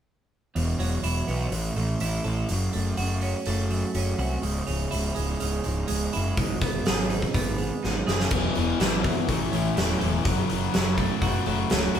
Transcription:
0.56 0.73 E1 medium
0.56 1.52 E2 medium
0.56 open hi-hat medium
0.79 0.97 E1 medium
0.79 1.52 F#3 medium
0.79 open hi-hat soft
1.03 1.21 E1 medium
1.03 1.52 E4 medium
1.03 open hi-hat medium
1.28 1.46 B1 medium
1.28 1.52 B3 medium
1.28 open hi-hat soft
1.52 1.69 A1 medium
1.52 2.49 A2 medium
1.52 open hi-hat medium
1.76 1.94 A1 medium
1.76 2.49 A3 medium
1.76 open hi-hat soft
2.00 2.19 A1 medium
2.00 2.50 E4 medium
2.00 open hi-hat medium
2.24 2.43 A1 medium
2.24 2.49 A4 medium
2.24 open hi-hat soft
2.49 2.68 F#1 medium
2.49 3.71 F#2 medium
2.49 open hi-hat medium
2.73 2.92 F#1 medium
2.73 3.45 A3 soft
2.73 open hi-hat soft
2.97 3.33 F#1 medium
2.97 4.17 F#4 medium
2.97 open hi-hat medium
3.21 3.94 C#4 medium
3.21 open hi-hat soft
3.46 3.82 F#1 medium
3.46 4.44 A3 medium
3.46 open hi-hat medium
3.71 4.44 F#3 medium
3.71 open hi-hat soft
3.95 4.12 F#1 medium
3.95 4.44 C#4 medium
3.95 open hi-hat medium
4.18 4.36 C2 medium
4.18 4.43 F#4 medium
4.18 open hi-hat soft
4.42 4.60 C#1 medium
4.42 5.64 C#2 medium
4.42 open hi-hat medium
4.67 4.86 C#1 medium
4.67 5.39 C#3 medium
4.67 open hi-hat soft
4.91 5.10 C#1 medium
4.91 6.12 E4 medium
4.91 open hi-hat medium
5.15 5.35 C#1 medium
5.15 5.87 G#3 medium
5.15 open hi-hat soft
5.40 5.59 C#1 medium
5.40 6.37 C#3 medium
5.40 open hi-hat medium
5.64 5.83 C#1 medium
5.64 6.36 G#2 medium
5.64 open hi-hat soft
5.88 6.07 C#1 medium
5.88 6.62 G#3 medium
5.88 open hi-hat medium
6.13 6.33 F#1 medium
6.13 6.38 E4 medium
6.13 open hi-hat soft
6.37 6.55 G#1 medium
6.37 7.59 G#2 medium
6.37 kick medium
6.37 open hi-hat medium
6.61 6.79 G#1 medium
6.61 7.33 B3 medium
6.61 kick medium
6.61 open hi-hat medium
6.86 7.23 G#1 medium
6.86 8.06 G#4 medium
6.86 snare loud
6.86 open hi-hat medium
7.10 7.82 D#4 medium
7.10 open hi-hat soft
7.22 kick medium
7.34 7.70 G#1 medium
7.34 8.31 B3 medium
7.34 kick medium
7.34 open hi-hat medium
7.58 8.31 G#3 medium
7.58 open hi-hat soft
7.83 8.02 G#1 medium
7.83 8.31 D#4 medium
7.83 snare soft
8.07 8.25 F#1 medium
8.07 8.31 G#4 medium
8.07 snare medium
8.20 snare medium
8.31 8.48 E1 medium
8.31 8.54 E2 medium
8.31 9.27 E2 medium
8.31 8.54 B2 medium
8.31 8.55 E3 medium
8.31 kick medium
8.31 crash medium
8.55 8.73 E1 medium
8.55 8.78 E2 medium
8.55 8.78 B2 medium
8.55 8.79 E3 medium
8.55 open hi-hat soft
8.79 9.13 G#1 medium
8.79 9.02 E2 medium
8.79 9.03 B2 medium
8.79 9.28 E3 medium
8.79 9.03 E3 medium
8.79 snare loud
8.79 open hi-hat medium
9.03 9.26 E2 medium
9.03 9.27 B2 medium
9.03 9.27 E3 medium
9.03 9.28 F#3 medium
9.03 kick medium
9.03 open hi-hat soft
9.28 9.46 A1 medium
9.28 10.24 A2 medium
9.28 9.52 A2 medium
9.28 9.53 E3 medium
9.28 9.53 A3 medium
9.28 kick medium
9.28 open hi-hat medium
9.52 9.69 A1 medium
9.52 9.75 A2 medium
9.52 9.76 E3 medium
9.52 9.76 A3 medium
9.52 10.98 C#4 medium
9.52 open hi-hat soft
9.76 9.94 E1 medium
9.76 9.99 A2 medium
9.76 9.99 E3 medium
9.76 10.00 A3 medium
9.76 10.25 E4 medium
9.76 snare medium
9.76 open hi-hat medium
10.00 10.19 E1 medium
10.00 10.23 A2 medium
10.00 10.23 E3 medium
10.00 10.24 A3 medium
10.00 10.25 A4 medium
10.00 open hi-hat soft
10.24 10.42 F#1 medium
10.24 11.46 F#2 medium
10.24 10.47 F#2 medium
10.24 10.48 C#3 medium
10.24 10.48 F#3 medium
10.24 kick medium
10.24 open hi-hat medium
10.49 10.68 F#1 medium
10.49 10.71 F#2 medium
10.49 10.72 C#3 medium
10.49 10.73 F#3 medium
10.49 open hi-hat medium
10.72 11.09 F#1 medium
10.72 10.97 F#2 medium
10.72 10.97 C#3 medium
10.72 11.94 F#3 medium
10.72 10.98 F#3 loud
10.72 snare medium
10.72 open hi-hat medium
10.98 11.20 F#2 medium
10.98 11.20 C#3 medium
10.98 11.21 F#3 medium
10.98 11.46 A3 medium
10.98 kick medium
10.98 open hi-hat soft
11.21 11.39 F#1 medium
11.21 11.45 F#2 medium
11.21 11.46 C#3 medium
11.21 11.46 F#3 medium
11.21 11.94 F#4 medium
11.21 kick medium
11.21 open hi-hat medium
11.46 11.63 F#1 medium
11.46 11.70 F#2 medium
11.46 11.70 C#3 medium
11.46 11.70 F#3 medium
11.46 12.00 A3 medium
11.46 open hi-hat soft
11.70 11.88 C#1 medium
11.70 11.93 F#2 medium
11.70 11.94 C#3 medium
11.70 11.94 F#3 medium
11.70 12.00 C#4 medium
11.70 snare loud
11.70 open hi-hat medium
11.95 12.00 D#1 medium
11.95 12.00 F#2 medium
11.95 12.00 C#3 medium
11.95 12.00 F#3 medium
11.95 12.00 F#4 medium
11.95 open hi-hat soft

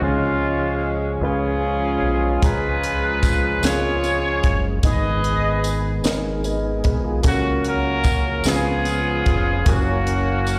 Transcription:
0.00 1.18 C#2 medium
0.00 1.18 C#3 soft
0.00 4.79 F3 medium
0.00 4.79 G#3 medium
0.00 0.77 G#3 medium
0.00 1.18 G#3 medium
0.00 4.79 C#4 medium
0.00 0.77 C#4 medium
0.00 1.19 C#4 medium
0.00 0.77 F4 medium
0.00 0.92 F4 medium
0.00 4.79 G#4 medium
0.00 0.77 G#4 medium
1.21 1.98 C#2 medium
1.21 1.97 G#3 medium
1.21 1.98 C#4 medium
1.21 2.40 C#4 medium
1.21 1.98 F4 medium
1.21 2.40 F4 medium
1.21 2.40 G#4 medium
1.21 1.98 B4 medium
2.02 2.39 B1 medium
2.42 3.59 C#2 medium
2.42 3.60 C#3 medium
2.42 3.18 G#3 medium
2.42 3.18 C#4 medium
2.42 3.18 F4 medium
2.42 3.60 F4 medium
2.42 3.60 G#4 medium
2.42 3.64 B4 medium
2.42 3.19 A#5 medium
2.42 kick loud
2.42 closed hi-hat medium
2.42 tambourine soft
2.83 closed hi-hat soft
3.23 kick medium
3.23 closed hi-hat medium
3.23 tambourine medium
3.61 4.40 C#2 medium
3.61 4.38 G#3 medium
3.61 4.38 C#4 medium
3.61 4.38 F4 medium
3.61 4.38 A#4 medium
3.61 4.68 C#5 medium
3.61 closed hi-hat medium
3.61 tambourine medium
3.65 4.68 F4 medium
3.65 4.68 G#4 medium
3.65 snare loud
4.04 closed hi-hat soft
4.04 tambourine soft
4.44 4.81 F#1 medium
4.44 kick medium
4.44 closed hi-hat soft
4.83 6.00 G#1 medium
4.83 6.01 G#2 medium
4.83 7.21 D#3 medium
4.83 7.21 G#3 soft
4.83 5.59 G#3 medium
4.83 5.59 B3 medium
4.83 7.21 B3 soft
4.83 5.59 D#4 medium
4.83 7.21 G#4 medium
4.83 5.60 G#4 medium
4.83 6.01 G#4 medium
4.83 6.01 B4 medium
4.83 5.75 D#5 medium
4.83 kick loud
4.83 closed hi-hat medium
4.83 tambourine soft
5.24 closed hi-hat soft
5.64 closed hi-hat medium
5.64 tambourine medium
6.04 6.81 G#1 medium
6.04 6.80 G#3 medium
6.04 6.80 B3 medium
6.04 6.80 D#4 medium
6.04 6.45 A#4 medium
6.04 snare loud
6.04 closed hi-hat medium
6.04 tambourine medium
6.44 6.83 B4 soft
6.44 6.83 D#5 medium
6.44 closed hi-hat soft
6.44 tambourine soft
6.84 7.22 B1 medium
6.84 7.03 G#4 medium
6.84 7.04 B4 medium
6.84 kick medium
6.84 closed hi-hat soft
7.04 7.43 F4 soft
7.04 7.43 G#4 medium
7.23 8.41 C#2 medium
7.23 8.41 C#3 medium
7.23 8.46 F#3 medium
7.23 7.99 A#3 medium
7.23 8.46 A#3 medium
7.23 8.00 C#4 medium
7.23 8.46 C#4 medium
7.23 8.00 F#4 medium
7.23 7.32 G#4 medium
7.23 7.32 A4 medium
7.23 kick loud
7.23 closed hi-hat medium
7.23 tambourine soft
7.27 8.43 A#3 medium
7.27 7.66 C#4 medium
7.27 7.64 F#4 medium
7.27 8.04 A#4 medium
7.32 8.49 A#4 medium
7.64 8.43 C#4 medium
7.64 8.43 F#4 medium
7.64 8.47 A#4 loud
7.64 closed hi-hat soft
8.04 kick medium
8.04 closed hi-hat soft
8.04 tambourine medium
8.44 9.22 C#2 medium
8.44 9.62 C#3 medium
8.44 9.67 F3 medium
8.44 9.21 B3 medium
8.44 9.67 B3 soft
8.44 9.63 B3 medium
8.44 9.21 C#4 medium
8.44 9.66 C#4 medium
8.44 9.21 F4 medium
8.44 9.63 F4 medium
8.44 9.21 G#4 medium
8.44 9.66 G#4 medium
8.44 snare loud
8.44 closed hi-hat medium
8.44 tambourine medium
8.48 9.68 G#4 medium
8.85 closed hi-hat soft
8.85 tambourine soft
9.26 9.63 F1 medium
9.26 kick medium
9.26 closed hi-hat soft
9.65 10.59 F#1 loud
9.65 10.59 F#3 medium
9.65 10.41 A#3 medium
9.65 10.59 A#3 medium
9.65 10.42 C#4 medium
9.65 10.59 C#4 medium
9.65 10.59 C#4 soft
9.65 10.42 F#4 medium
9.65 9.73 G#4 medium
9.65 10.42 A#4 medium
9.65 kick loud
9.65 closed hi-hat medium
9.65 tambourine soft
9.70 10.59 F#4 medium
9.70 10.59 A#4 medium
10.07 closed hi-hat soft
10.47 closed hi-hat soft
10.47 tambourine medium

